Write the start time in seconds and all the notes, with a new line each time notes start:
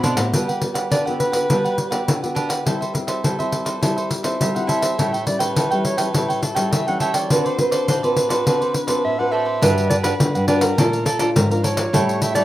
Already playing: A2 C4 F#4 A4 B5
0.03 B2 D4 C5 D5 F#5, pandeiro
0.17 A2 C5 D5 F#5, pandeiro
0.33 G3 B3 D4 F#4 G4 A4 B4 F#5, pandeiro
0.48 G4 B4 F#5, pandeiro
0.61 B3 F#4 A4, muted cavaquinho stroke, pandeiro
0.74 G4 B4 F#5, pandeiro
0.91 D3 D4 G4 B4 D5 F#5, pandeiro
1.06 B3 F#4 G4 A4 B4 F#5, pandeiro
1.20 B4, pandeiro
1.32 B3 F#4 G4 A4 B4 F#5, pandeiro
1.49 G3 B3 D4 F#4 G4 A4 B4 F#5, pandeiro
1.64 G4 B4 F#5, pandeiro
1.77 muted cavaquinho stroke, pandeiro
1.91 B3 F#4 G4 A4 B4 F#5, pandeiro
2.08 D3, pandeiro
2.22 B3 F#4 G4 A4 B4 F#5, pandeiro
2.35 D4 G4 B4 F#5, pandeiro
2.49 G4 B4 F#5, pandeiro
2.65 G3 C4 E4 A4 C5 E5, pandeiro
2.81 A4 C5 E5, pandeiro
2.93 C4 E4 A4, muted cavaquinho stroke, pandeiro
3.07 A4 C5 E5, pandeiro
3.23 G3 E4 A4 C5 E5, pandeiro
3.39 C4 E4 A4 C5 E5, pandeiro
3.52 pandeiro
3.65 A4 C5 E5, pandeiro
3.81 G3 C4 E4 A4 C5 E5, pandeiro
3.96 A4 C5 E5, pandeiro
4.10 muted cavaquinho stroke, pandeiro
4.23 C4 E4 A4 C5 E5, pandeiro
4.40 G3 E5, pandeiro
4.54 C4 E4 A4 C5 E5 F#5, pandeiro
4.67 E4 A4 C5 E5, pandeiro
4.81 A4 C5 E5, pandeiro
4.98 A2 G3 C#4 E4 A4 C#5 G5, pandeiro
5.12 A4 C#5 G5, pandeiro
5.26 G3 C#4 E4 D5, muted cavaquinho stroke, pandeiro
5.39 A4 B4 C#5 G5, pandeiro
5.55 E3 E4 A4 C#5 G5, pandeiro
5.71 G3 C#4 E4 A4 C#5 G5, pandeiro
5.85 C#5, pandeiro
5.97 G3 C#4 E4 A4 B4 C#5 G5, pandeiro
6.13 A2 G3 C#4 E4 A4 C#5 G5, pandeiro
6.28 A4 C#5 G5, pandeiro
6.41 A4, muted cavaquinho stroke, pandeiro
6.55 G3 C#4 E4 A4 C#5 G5, pandeiro
6.72 E3 E5, pandeiro
6.87 G3 C#4 E4 A4 C#5 F#5 G5, pandeiro
7.00 E4 A4 C#5 E5 G5, pandeiro
7.14 A4 C#5 D5 G5, pandeiro
7.30 D3 C4 F#4 A4 B4 C5 D5, pandeiro
7.45 A4 C5 D5, pandeiro
7.58 C4 F#4 B4, muted cavaquinho stroke, pandeiro
7.71 A4 C5 D5, pandeiro
7.88 A2 F#4 A4 C5 D5, pandeiro
8.03 C4 F#4 A4 B4 C5 D5, pandeiro
8.16 B4, pandeiro
8.29 C4 F#4 A4 B4 C5 D5, pandeiro
8.46 D3 C4 F#4 A4 B4 C5 D5, pandeiro
8.61 A4 C5 D5, pandeiro
8.74 muted cavaquinho stroke, pandeiro
8.87 C4 F#4 A4 B4 C5 D5, pandeiro
9.05 A2 E5
9.19 C4 F#4 A4 B4 C5 D5 F#5
9.32 F#4 A4 C5 D5 E5
9.45 A4 C5 D5
9.61 G2 G3 D4 F#4 G4 B4 F#5, pandeiro
9.78 pandeiro
9.90 D4 G4 B4 D5 F#5, pandeiro
10.03 D4 F#4 G4 B4 F#5, pandeiro
10.20 D3, pandeiro
10.35 G2 G4 B4 F#5, pandeiro
10.48 D4 F#4 G4 B4 D5 F#5, pandeiro
10.61 G4 A#4 B4 F#5, pandeiro
10.78 A#2 A3 D4 F4 A4 D5 F5 A#5, pandeiro
10.93 pandeiro
11.05 A4 D5 F5 A#5, pandeiro
11.19 A3 D4 F4 A4 D5 F5 A#5, pandeiro
11.36 G#2 F3 A#4, pandeiro
11.51 D4 F4 A#4 D5 F5 A#5, pandeiro
11.63 A4 C#5 D5 F5 A#5, pandeiro
11.77 D5 F5 A#5, pandeiro
11.93 A2 G3 C#4 E4 A4 C#5 G5, pandeiro
12.09 pandeiro
12.21 E4 A4 C#5 E5 G5, pandeiro
12.34 G3 E4 A4 C#5 D5 G5, pandeiro